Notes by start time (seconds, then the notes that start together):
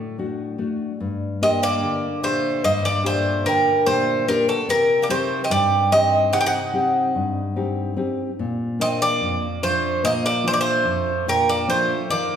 Already playing: A2 A3 D5
0.18 A3 D4 F#4
0.58 A3 D4 F#4
1.00 G2
1.41 A#3 C4 D4 G4 D#5
1.63 A#3 D5
1.81 D3
2.23 A#2 A3 D4 G4 C5
2.64 G2 A#3 D#5
2.85 A#3 D5
3.03 A#2 A3 D4 G4 C5
3.45 D3 G3 A#4
3.86 A#2 A3 D4 G4 C5
4.28 G3 A#3 D4 G4 A#4
4.48 F#3 A4
4.68 C3 G3 A#4
5.02 A#3 D5
5.09 A3 C4 D#4 G4 C5
5.44 C4 D#5
5.50 G2 G3 D5
5.92 C4 D#4 G4 D#5
6.33 C3 D#4 F#5
6.41 D#4 G5
6.46 D#4 F#5
6.74 C4 D#4 G4
7.15 G2
7.56 C4 D#4 G4
7.96 C4 D#4 G4
8.39 A#2
8.79 A#3 C4 D4 F4 D#5
9.02 A#3 D5
9.21 F2
9.62 F3 A3 D4 F4 C5
10.04 A#2 A#3 D#5
10.26 A#3 D5
10.44 F3 A3 D4 F4 C5
10.54 A#3 D5
10.61 A3 C5
10.85 F2
11.27 A#2 G3 D4 F4 A#4
11.49 A#3 D5
11.68 F3 A3 D4 F4 C5
12.10 D#3 A#3 D5